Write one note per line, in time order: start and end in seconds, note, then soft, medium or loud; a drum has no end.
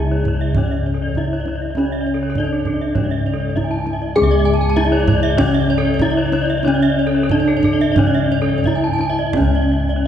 0.00 2.95 C#2 loud
0.00 0.57 G#3 soft
0.00 0.57 E4 medium
0.00 1.13 G#4 medium
0.05 0.12 D5 soft
0.10 0.20 C#5 soft
0.10 kendang slap soft
0.20 0.27 D5 soft
0.25 0.35 C#5 soft
0.25 kendang slap soft
0.25 kendang low soft
0.35 0.43 D5 soft
0.41 0.49 E5 soft
0.49 0.57 D5 soft
0.55 1.76 C#3 soft
0.55 1.17 C#4 soft
0.55 0.65 C#5 soft
0.55 kendang low medium
0.65 0.72 D5 soft
0.70 0.79 E5 soft
0.70 kendang slap soft
0.80 0.87 D5 soft
0.86 0.94 C#5 soft
0.86 kendang slap soft
0.94 1.02 A4 soft
1.02 1.10 D5 soft
1.09 1.17 C#5 soft
1.15 1.26 D4 soft
1.15 1.77 E4 medium
1.15 1.25 E5 medium
1.15 kendang slap soft
1.15 kendang low soft
1.24 1.32 D5 soft
1.33 1.40 C#5 soft
1.40 1.47 D5 soft
1.46 1.55 C#5 soft
1.46 kendang slap soft
1.46 kendang high soft
1.55 1.63 D5 soft
1.60 1.69 E5 soft
1.60 kendang slap soft
1.70 1.78 D5 soft
1.75 2.97 C#3 soft
1.75 3.53 C#4 medium
1.75 2.38 C#4 soft
1.75 1.85 C#5 soft
1.75 kendang high soft
1.85 1.92 D5 soft
1.90 2.00 E5 soft
1.90 kendang slap soft
2.01 2.08 D5 soft
2.07 2.14 C#5 soft
2.14 2.22 A4 soft
2.23 2.30 C#5 soft
2.30 2.37 A4 soft
2.35 2.44 D4 soft
2.35 2.45 D5 medium
2.35 kendang slap soft
2.35 kendang high soft
2.35 kendang low soft
2.40 2.98 D4 medium
2.44 2.52 C#5 soft
2.50 2.60 A4 soft
2.50 kendang slap soft
2.59 2.67 C#5 soft
2.65 2.74 A4 medium
2.65 kendang slap soft
2.65 kendang low soft
2.74 2.82 D5 soft
2.82 2.89 E5 soft
2.88 2.96 D5 soft
2.95 4.73 G#2 medium
2.95 4.17 C#3 soft
2.95 3.57 C#4 soft
2.95 3.03 C#5 soft
2.95 kendang low soft
3.04 3.11 D5 soft
3.11 3.19 E5 soft
3.11 kendang slap soft
3.18 3.26 D5 soft
3.26 3.34 C#5 soft
3.26 kendang slap soft
3.34 3.41 A4 soft
3.40 3.48 D5 soft
3.49 3.57 C#5 soft
3.56 3.64 D4 medium
3.56 4.17 E4 medium
3.56 3.64 E5 medium
3.56 kendang slap soft
3.56 kendang low soft
3.64 3.72 G#5 soft
3.71 3.79 A5 medium
3.79 3.87 G#5 soft
3.86 3.94 A5 soft
3.86 kendang slap soft
3.86 kendang high soft
3.93 4.01 E5 soft
4.02 4.09 D5 soft
4.02 kendang slap soft
4.09 4.16 E5 soft
4.16 5.39 G#3 medium
4.16 4.77 G#4 loud
4.16 5.97 G#4 medium
4.16 4.24 G#5 medium
4.16 kendang high medium
4.21 7.96 C#2 loud
4.21 4.31 E5 medium
4.31 4.39 D5 medium
4.31 kendang slap soft
4.39 4.47 E5 medium
4.45 4.53 G#5 medium
4.54 4.61 A5 medium
4.61 4.69 G#5 medium
4.70 4.77 A5 medium
4.76 4.85 D4 soft
4.76 5.38 E4 medium
4.76 4.84 E5 loud
4.76 kendang slap soft
4.76 kendang high medium
4.85 4.92 D5 medium
4.92 5.00 C#5 medium
4.92 kendang slap soft
5.00 5.08 D5 medium
5.08 5.16 C#5 medium
5.08 kendang slap soft
5.08 kendang low medium
5.15 5.23 D5 medium
5.23 5.31 E5 loud
5.31 5.38 D5 medium
5.38 6.65 C#3 medium
5.38 6.01 C#4 loud
5.38 5.46 C#5 medium
5.38 kendang low medium
5.47 5.54 D5 medium
5.53 5.62 E5 medium
5.53 kendang slap soft
5.62 5.70 D5 medium
5.69 5.78 C#5 medium
5.69 kendang slap soft
5.78 5.86 A4 medium
5.85 5.93 D5 medium
5.94 6.02 C#5 medium
5.99 6.09 D4 soft
5.99 6.65 E4 loud
5.99 6.10 E5 medium
5.99 kendang slap soft
5.99 kendang low medium
6.10 6.18 D5 medium
6.17 6.25 C#5 medium
6.26 6.34 D5 medium
6.32 6.41 C#5 medium
6.32 kendang slap soft
6.32 kendang high medium
6.42 6.49 D5 medium
6.48 6.58 E5 medium
6.48 kendang slap soft
6.57 6.65 D5 medium
6.63 7.97 C#3 medium
6.63 8.62 C#4 medium
6.63 6.73 C#5 medium
6.63 kendang high medium
6.68 7.32 C#4 loud
6.74 6.82 D5 medium
6.80 6.90 E5 medium
6.80 kendang slap soft
6.90 6.98 D5 medium
6.99 7.07 C#5 medium
7.07 7.15 A4 medium
7.15 7.23 C#5 medium
7.23 7.31 A4 medium
7.29 7.39 D4 soft
7.29 7.98 D4 medium
7.29 7.39 D5 medium
7.29 kendang slap soft
7.29 kendang high medium
7.29 kendang low medium
7.40 7.48 C#5 medium
7.47 7.56 A4 medium
7.47 kendang slap soft
7.57 7.65 C#5 medium
7.63 7.73 A4 medium
7.63 kendang slap soft
7.63 kendang low medium
7.73 7.81 D5 medium
7.80 7.89 E5 medium
7.80 kendang slap soft
7.92 7.99 D5 medium
7.96 10.03 G#2 medium
7.96 9.36 C#3 medium
7.96 8.66 C#4 medium
7.96 8.07 C#5 medium
7.96 kendang low medium
8.07 8.15 D5 medium
8.13 8.23 E5 medium
8.13 kendang slap soft
8.24 8.32 D5 medium
8.30 8.40 C#5 medium
8.30 kendang slap soft
8.42 8.49 A4 medium
8.49 8.58 D5 medium
8.58 8.66 C#5 medium
8.64 8.74 D4 soft
8.64 9.36 E4 medium
8.64 8.74 E5 medium
8.64 kendang slap soft
8.64 kendang low soft
8.75 8.84 G#5 medium
8.84 8.92 A5 medium
8.94 9.01 G#5 medium
8.99 9.09 A5 medium
8.99 kendang slap soft
8.99 kendang high soft
9.10 9.18 E5 medium
9.19 9.27 D5 medium
9.27 9.36 E5 medium
9.33 10.07 C#4 medium
9.33 9.45 C#5 medium
9.33 kendang high soft
9.33 kendang low medium
9.37 10.07 C#2 loud
9.37 10.07 C#4 medium
9.45 9.53 E5 soft
9.55 9.63 D5 medium
9.62 9.71 E5 medium
9.69 9.80 D5 medium
9.69 kendang slap soft
9.80 9.89 E5 soft
9.89 9.98 D5 medium
9.96 10.06 C#5 soft